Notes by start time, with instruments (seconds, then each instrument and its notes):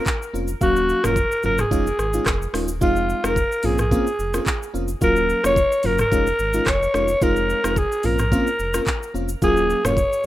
Already playing: alto saxophone A#4
0.06 kick, clap, shaker
0.22 shaker
0.33 sub bass F1, fm electric piano A#3 C4 C#4 F4, shaker
0.48 shaker
0.61 sub bass D#1, fm electric piano F#3 A#3 C#4 F5, alto saxophone F#4, kick, shaker
0.76 shaker
0.89 shaker
1.03 sub bass F1, fm electric piano F#3 A#3 C#4 F4, alto saxophone A#4, cross-stick, mid tom, shaker
1.16 kick, shaker
1.32 shaker
1.43 sub bass F#1, fm electric piano F#3 A#3 C#4 F4, alto saxophone A#4, mid tom, shaker
1.58 alto saxophone G#4, cross-stick, mid tom, shaker
1.71 sub bass F1, fm electric piano G#3 C#4 D#4 F4, kick, shaker
1.87 shaker
1.99 sub bass G#1, cross-stick, shaker
2.13 fm electric piano G#3 C#4 D#4 F4, shaker
2.26 sub bass F1, kick, cross-stick, clap, shaker
2.42 shaker
2.53 sub bass D#1, fm electric piano G#3 C#4 D#4 F4, cross-stick, open hi-hat, shaker
2.68 shaker
2.81 sub bass F1, fm electric piano G#3 C4 D#4 F4, alto saxophone F4, kick, shaker
2.96 shaker
3.09 shaker
3.24 sub bass F1, fm electric piano G#3 C4 D#4 F4, alto saxophone A#4, cross-stick, shaker
3.36 kick, shaker
3.52 shaker
3.63 sub bass A#1, fm electric piano A#3 C4 C#4 F4, alto saxophone G#4, mid tom, open hi-hat, shaker
3.78 alto saxophone G#4, cross-stick, mid tom, shaker
3.91 fm electric piano A#3 C4 C#4 F4, kick, shaker
4.07 shaker
4.19 sub bass F1, shaker
4.34 fm electric piano A#3 C4 C#4 F4, cross-stick, shaker
4.46 kick, clap, shaker
4.63 shaker
4.74 sub bass F1, fm electric piano A#3 C4 C#4 F4, shaker
4.88 shaker
5.01 sub bass D#1, fm electric piano F#3 A#3 C#4 F4, alto saxophone A#4, kick, shaker
5.16 shaker
5.30 shaker
5.44 sub bass F1, fm electric piano F#3 A#3 C#4 F4, alto saxophone C#5, cross-stick, shaker
5.56 kick, shaker
5.72 shaker
5.83 sub bass F#1, fm electric piano F#3 A#3 C#4 F4, alto saxophone A#4, mid tom, open hi-hat, shaker
5.98 alto saxophone A#4, cross-stick, mid tom, shaker
6.11 sub bass F1, fm electric piano G#3 C#4 D#4 F4, kick, shaker
6.27 shaker
6.39 sub bass G#1, shaker
6.53 fm electric piano G#3 C#4 D#4 F4, shaker
6.67 sub bass F1, alto saxophone C#5, kick, cross-stick, clap, shaker
6.83 shaker
6.94 sub bass F1, fm electric piano G#3 C#4 D#4 F4, cross-stick, shaker
7.08 shaker
7.21 sub bass F1, fm electric piano G#3 C4 D#4 F4, alto saxophone A#4, kick, shaker
7.36 shaker
7.50 shaker
7.64 sub bass F1, fm electric piano G#3 C4 D#4 F4, cross-stick, shaker
7.76 alto saxophone G#4, kick, shaker
7.92 shaker
8.03 sub bass A#1, fm electric piano A#3 C4 C#4 F4, alto saxophone A#4, mid tom, open hi-hat, shaker
8.19 cross-stick, mid tom, shaker
8.32 fm electric piano A#3 C4 C#4 F4, kick, shaker
8.47 shaker
8.59 sub bass F1, shaker
8.74 fm electric piano A#3 C4 C#4 F4, cross-stick, shaker
8.87 kick, clap, shaker
9.03 shaker
9.14 sub bass F1, fm electric piano A#3 C4 C#4 F4, shaker
9.29 shaker
9.42 sub bass D#1, fm electric piano F#3 A#3 C#4 F4, alto saxophone G#4, kick, shaker
9.57 shaker
9.70 shaker
9.84 sub bass F1, fm electric piano F#3 A#3 C#4 F4, alto saxophone C#5, cross-stick, mid tom, shaker
9.97 kick, shaker
10.13 shaker